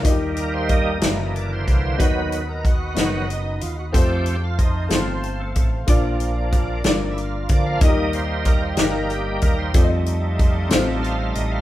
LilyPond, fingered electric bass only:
\new Staff \with { instrumentName = "Fingered electric bass" } { \clef bass \time 6/8 \key ees \major \tempo 4. = 62 ees,4. ges,,4 c,8 | dis,4. fis,,4 dis,8 | f,4. g,,4 a,,8 | bes,,4. g,,4 d,8 |
ees,4. g,,4 ees,8 | f,4. a,,4 a,,8 | }